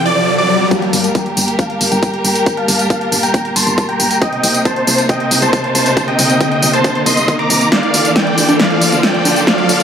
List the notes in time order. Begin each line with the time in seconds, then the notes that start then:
Already playing: F2 C3 C4 A4, riser
0.06 D5 D6
0.38 D5 D6
0.71 G3 A#3 G4 A#4 F5 A5, kick, closed hi-hat, tambourine, riser
0.82 closed hi-hat
0.93 G1, open hi-hat, tambourine
1.04 closed hi-hat, tambourine
1.15 G5 A#5, kick, closed hi-hat, tambourine
1.26 closed hi-hat
1.37 G1, open hi-hat, tambourine
1.48 closed hi-hat, tambourine
1.59 F5 A5, kick, closed hi-hat, tambourine
1.70 closed hi-hat
1.81 G1, open hi-hat, tambourine
1.92 G1 G5 A#5, closed hi-hat, tambourine
2.03 kick, closed hi-hat, tambourine
2.14 closed hi-hat
2.25 G1 G5 A#5, open hi-hat, tambourine
2.35 closed hi-hat, tambourine
2.46 kick, closed hi-hat, tambourine
2.57 F5 A5, closed hi-hat
2.68 G1, open hi-hat, tambourine
2.79 closed hi-hat, tambourine
2.90 F5 A5, kick, closed hi-hat, tambourine
3.01 closed hi-hat
3.12 G1, open hi-hat, tambourine
3.23 G5 A#5, closed hi-hat, tambourine
3.34 kick, closed hi-hat, tambourine
3.45 closed hi-hat
3.56 G1 A5 C6, open hi-hat, tambourine
3.67 G1, closed hi-hat, tambourine
3.78 kick, closed hi-hat, tambourine
3.89 G5 A#5, closed hi-hat
4.00 G1, open hi-hat, tambourine
4.11 closed hi-hat, tambourine
4.22 C3 C4 D#4 D#5 G5, kick, closed hi-hat, tambourine
4.33 closed hi-hat
4.44 C2, open hi-hat, tambourine
4.54 closed hi-hat, tambourine
4.65 C5 A5, kick, closed hi-hat, tambourine
4.76 closed hi-hat
4.87 C2, open hi-hat, tambourine
4.98 closed hi-hat, tambourine
5.09 D#5 G5, kick, closed hi-hat, tambourine
5.20 closed hi-hat
5.31 C2, open hi-hat, tambourine
5.42 C2 C5 A5, closed hi-hat, tambourine
5.53 kick, closed hi-hat, tambourine
5.64 closed hi-hat
5.75 C2 C5 A5, open hi-hat, tambourine
5.86 closed hi-hat, tambourine
5.97 kick, closed hi-hat, tambourine
6.08 D#5 G5, closed hi-hat
6.19 C2, open hi-hat, tambourine
6.30 closed hi-hat, tambourine
6.40 D#5 G5, kick, closed hi-hat, tambourine
6.52 closed hi-hat
6.62 C2, open hi-hat, tambourine
6.73 C5 A5, closed hi-hat, tambourine
6.84 kick, closed hi-hat, tambourine
6.95 closed hi-hat
7.06 C2 D#5 C6, open hi-hat, tambourine
7.17 G1, closed hi-hat, tambourine
7.28 kick, closed hi-hat, tambourine
7.39 A#5 D6, closed hi-hat
7.50 C2, open hi-hat, tambourine
7.61 closed hi-hat, tambourine
7.72 D3 F4 A4 D5 F5, kick, snare, closed hi-hat, tambourine
7.83 closed hi-hat
7.94 D2, open hi-hat, tambourine
8.05 closed hi-hat, tambourine
8.16 D5 G5, kick, snare, closed hi-hat, tambourine
8.27 closed hi-hat
8.38 D2, open hi-hat, tambourine
8.49 closed hi-hat, tambourine, high conga
8.59 D5 F5, kick, snare, closed hi-hat, tambourine
8.71 closed hi-hat
8.81 D2, open hi-hat, tambourine
8.92 D2, closed hi-hat, tambourine
9.03 D5 G5, kick, snare, closed hi-hat, tambourine
9.14 closed hi-hat
9.25 D2, open hi-hat, tambourine, high conga
9.36 closed hi-hat, tambourine
9.47 D5 F5, kick, snare, closed hi-hat, tambourine
9.58 closed hi-hat
9.69 D2, open hi-hat, tambourine